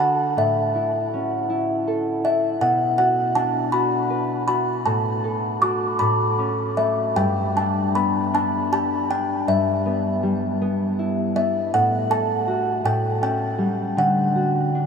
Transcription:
Already playing: D3 D4 F#4 A4
0.00 F#5
0.37 A2 E5
0.75 E4
1.14 C#4
1.50 E4
1.87 A4
2.24 E4 E5
2.61 B2 F#5
2.98 F#4 F#5
3.35 D4 A5
3.72 F#4 B5
4.10 B4
4.48 F#4 B5
4.86 A2 A5
5.24 A4
5.62 F#4 D6
5.99 A2 B5
6.39 C#4
6.77 A3 E5
7.16 G2 G5
7.56 D4 A5
7.95 B3 B5
8.34 D4 A5
8.72 G4 A5
9.10 D4 G5
9.47 G2 E5
9.86 B3
10.23 G3
10.61 B3
10.99 E4
11.36 B3 E5
11.74 A2 F#5
12.10 A4 A5
12.48 F#4
12.84 A2 G5
13.21 C#4 G5
13.58 G3
13.97 D3 F#5
14.35 F#4
14.75 D4

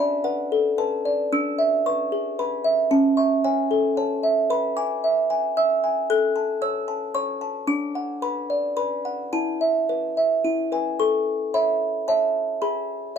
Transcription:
Already playing: D4 D5
0.00 B5
0.24 B4 F#5
0.52 A4
0.78 B4 A5
1.05 D5
1.32 D4 E6
1.58 E5
1.86 B4 C#6
2.12 G#4
2.39 B4 B5
2.64 E5
2.91 C#4 A5
3.17 E5 C#6
3.44 C#5 G#5
3.71 A4
3.97 C#5 A5
4.23 E5
4.50 B4 B5
4.77 G#5 D6
5.04 E5
5.30 G#5
5.57 E5 E6
5.84 G#5
6.10 A4 F#6
6.36 A5
6.62 C#5 E6
6.88 A5
7.15 C#5 C#6
7.41 A5
7.67 D4 D6
7.95 F#5
8.22 B4 B5
8.50 D5
8.77 B4 B5
9.05 F#5
9.33 E4 A5
9.61 E5
9.89 B4
10.17 E5
10.45 E4
10.72 B4 G#5
10.99 A4 C#6
11.54 C#5 E5 B5
12.08 C#5 E5 A5
12.62 G#4 B5

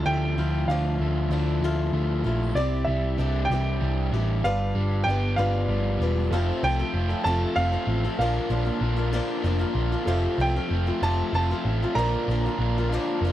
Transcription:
Already playing: D3 F3 A3 D4 E4 F4
0.06 D2 A3 G5
0.37 D2 F3 A3 E4 F4
0.68 D2 D3 F3 A3 F4 F5
0.99 D2 A3
1.29 D2 F3 A3 D4 E4 F4
1.62 D2 D3 F3 A3 E4 F4
1.93 D2 A3
2.24 A#1 F3 A3 E4 F4
2.54 C2 C3 C4 E4 G4 D5
2.85 C2 G3 E5
3.17 C2 C4 D4 E4 G4 D5
3.45 E3 G5
3.49 C2 C4 E4 G4 D5
3.80 C2 G3
4.11 A1 E3 E4 G4 D5
4.43 G1 G2 G3 D4 F4 B4 D5 F5
4.75 G1 G3
5.04 G1 B3 G5
5.08 D4 F4 B4 D5
5.36 G1 F3 G3 D4 F4 B4 D5 F5
5.68 G1 G3
6.00 E1 F3 F4 B4 D5
6.30 F1 F2 C3 F3 A3 C4 A4 C5 F5
6.35 F4
6.63 C2 F3 A3 C4 F4 A4 G5
6.79 F3 A3 C4 A4
6.93 F1 F3 A3 C4 F4
7.09 F3 A3 C4 A4
7.23 F1 F2 C3 F3 A3 C4 F4 A4 A5
7.55 F1 F3 A3 C4 F4 A4 F5
7.72 F3 A3 C4 A4
7.86 A1 F3 A3 C4 F4
8.05 F3 A3 C4 A4
8.17 A#1 A#2 D3 F3 A#3 D4 F4 A#4 D5 F5
8.22 F4
8.50 A#1 F3 A#3 D4 F4
8.65 A#3 D4 F4
8.80 A#1 D3 A#3 D4 F4
8.97 A#3 D4 F4
9.12 A#2 F3 A#3 D4 F4
9.41 F1 D3 F3 A#3 D4 F4
9.45 D4 F4
9.59 A#3 D4 F4
9.74 A#1 A#3 D4 F4
9.92 A#3 D4 F4
10.04 F1 F2 C3 F3 A3 C4 F4 A4 C5 F5
10.09 F4
10.35 C2 F3 A3 C4 F4
10.40 F3 A3 C4 F4 G5
10.56 F3 A3 C4 F4
10.68 F1 F3 A3 C4 F4
10.86 F3 A3 C4 F4
10.99 F1 F2 C3 F3 A3 C4 F4
11.03 F3 A3 C4 F4 A5
11.32 F1 F3 A3 C4 F4 A5
11.51 F3 A3 C4 F4
11.64 A1 F3 A3 C4 F4
11.83 F3 A3 C4 F4
11.95 A#1 A#2 D3 F3 A#3 D4 F4 A#4 D5 F5 A#5
11.99 D4 F4
12.27 A#1 F3 A#3 D4 F4
12.31 A#3 D4 F4
12.46 A#3 D4 F4
12.58 A#1 D3 A#3 D4 F4
12.78 A#3 D4 F4
12.89 A#2 A#3 D4 F4
12.93 F3 A#3 D4 F4
13.20 F1 D3 A#3 D4 F4
13.25 F3 A#3 D4 F4

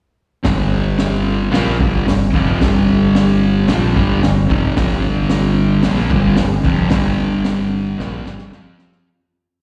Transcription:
0.44 G1 G2 D3 G3, kick, snare, open hi-hat
0.99 snare, open hi-hat
1.51 A#1 A#2 F3 A#3, snare, open hi-hat
1.78 G1 G2 D3 G3, kick
2.06 G1 G2 D3, snare, open hi-hat
2.32 F1 F2 C3 F3, kick
2.60 G1 G2 D3 G3, kick, snare, open hi-hat
3.15 snare, open hi-hat
3.67 A#1 A#2 F3 A#3, snare, open hi-hat
3.93 G1 G2 D3 G3, kick
4.22 G1 G2 D3, snare, open hi-hat
4.49 F1 F2 C3 F3, kick
4.77 G1 G2 D3 G3, kick, snare, open hi-hat
5.30 snare, open hi-hat
5.83 A#1 A#2 F3 A#3, snare, open hi-hat
6.10 G1 G2 D3 G3, kick
6.36 G1 G2 D3, snare, open hi-hat
6.64 F1 F2 C3 F3, kick
6.89 G1 G2 D3 G3, kick, snare, open hi-hat
7.45 snare, open hi-hat
7.98 A#1 A#2 F3 A#3, snare
8.24 G1 G2 D3 G3, snare
8.39 snare
8.51 F2 F3 C4 F4, snare
8.79 snare
8.92 snare

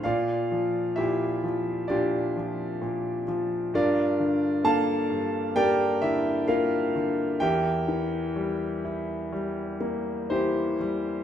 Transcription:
0.04 A#2 F4 D5 F5
0.52 F3
0.96 A#2 E4 G4 E5
1.44 F3
1.88 A#2 D4 F4 G4 D5
2.37 F3
2.82 A#2
3.28 F3
3.74 G2 D4 F4 A#4 D5
4.19 D3
4.64 A#3 A4 F5 A5
5.10 G2
5.56 A#3 G4 A#4 D5 G5
6.02 D3 E4 E5
6.48 A#3 F4 A#4 F5
6.95 D3
7.40 E2 G4 A#4 E5 G5
7.88 E3
8.36 G3
8.85 E4
9.32 G3
9.81 A#3
10.30 E3 E4 G4 C5
10.81 G3

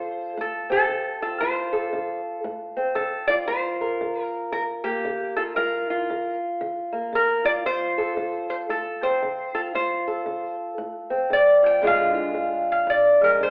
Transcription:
Already playing: D3 F4 A4 C5
0.37 A2 A4
0.70 C4 A4
0.89 D3
1.22 F4 A4
1.40 D2 F4 C5
1.73 A4
1.93 D3
2.44 A2
2.77 C4
2.95 D3 A4
3.27 F4 D5
3.48 G2 F4 C5
3.81 A#4
4.01 D3
4.23 A#4
4.52 D3 A#4
4.84 A#3 G4
5.05 D3
5.36 F4 A4
5.56 G2 F4 A#4
5.90 F4
6.10 D3
6.61 D3
6.93 A#3
7.13 D3 A#4
7.45 F4 D5
7.66 D2 F4 C5
7.98 A4
8.17 D3
8.50 C5
8.69 A2 A4
9.02 C4 C5
9.22 D3
9.55 F4 A4
9.74 D2 F4 C5
10.08 A4
10.26 D3
10.78 A2
11.10 C4
11.30 D3 D5
11.63 F4 G5
11.81 A#2 D3 G#3 D4 F4
11.87 F5
12.14 F4
12.34 D3
12.72 F5
12.87 F2 D5
13.21 G#3 A#4
13.41 D3 C5

